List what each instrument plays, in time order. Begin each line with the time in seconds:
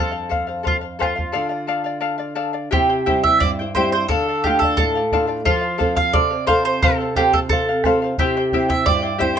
Already playing: nylon-string guitar F2, charango A4 C5 F5, mandolin A4
0.12 charango C5 F5
0.29 charango A4 C5 F5, bombo low
0.47 charango C5 F5
0.63 mandolin F4, charango A4 C5 F5, bombo low
0.81 charango C5 F5
0.99 mandolin F4, charango A4 C5 F5, bombo rim, bombo low
1.16 charango C5 F5, bombo low
1.32 nylon-string guitar D3, charango A4 D5 F5
1.49 charango D5 F5
1.67 charango A4 D5 F5
1.84 charango D5 F5
2.01 charango A4 D5 F5
2.18 charango D5 F5
2.35 charango A4 D5 F5
2.53 charango D5 F5
2.71 nylon-string guitar C3, charango E4 G4 C5 E5 G5, mandolin G4, bombo low
2.89 charango E4 C5 G5
3.06 nylon-string guitar G3 C4 E4, charango E4 G4 C5 E5 G5, bombo low
3.23 charango E4 C5 G5, mandolin E5, bombo low
3.40 nylon-string guitar G2, charango E4 C5 E5 G5, mandolin D5, bombo low
3.59 charango E4 C5 G5
3.75 nylon-string guitar G3 C4 E4, charango E4 G4 C5 E5 G5, mandolin C5, bombo low
3.92 charango E4 C5 G5, mandolin C5
4.08 nylon-string guitar D3, mandolin A4, charango A4 D5 F5, bombo low
4.29 charango D5 F5
4.44 nylon-string guitar A3 D4 F4, mandolin G4, charango A4 D5 F5, bombo low
4.59 mandolin A4, charango F5, bombo low
4.64 charango D5
4.77 nylon-string guitar A2, mandolin A4, charango A4 D5 F5, bombo low
4.95 charango D5 F5
5.12 nylon-string guitar A3 D4 F4, charango A4 D5 F5, bombo low
5.27 charango D5 F5
5.45 nylon-string guitar F3, mandolin F4, charango A4 C5 F5, bombo low
5.61 charango C5 F5
5.78 nylon-string guitar C4 F4 A4, charango A4 C5 F5, bombo low
5.95 charango C5 F5, mandolin F5, bombo low
6.13 nylon-string guitar C3, charango A4 C5 F5, mandolin D5, bombo low
6.30 charango C5 F5
6.47 nylon-string guitar C4 F4 A4, charango A4 C5 F5, mandolin C5, bombo low
6.65 mandolin C5, charango C5 F5
6.82 nylon-string guitar C3, mandolin A4, charango A4 C5 F5, bombo low
7.01 charango C5 F5
7.15 nylon-string guitar C4 F4 A4, mandolin G4, charango A4 C5 F5, bombo low
7.33 mandolin A4, charango C5 F5, bombo low
7.49 nylon-string guitar C3, mandolin A4, charango A4 C5 F5, bombo low
7.69 charango C5 F5
7.84 nylon-string guitar C4 F4 A4, charango A4 C5 F5, bombo rim, bombo low
8.02 charango C5 F5
8.18 nylon-string guitar C3, charango E4 G4 C5 E5 G5, mandolin G4, bombo low
8.37 charango E4 C5 G5
8.52 nylon-string guitar C4 E4 G4, charango E4 G4 C5 E5 G5, bombo low
8.69 charango E4 C5 G5, mandolin E5, bombo low
8.86 nylon-string guitar G2, charango E4 C5 E5 G5, mandolin D5, bombo low
9.02 charango E4 C5 G5
9.18 nylon-string guitar C4 E4 G4, charango E4 G4 C5 E5 G5, mandolin C5, bombo low
9.35 charango C5 G5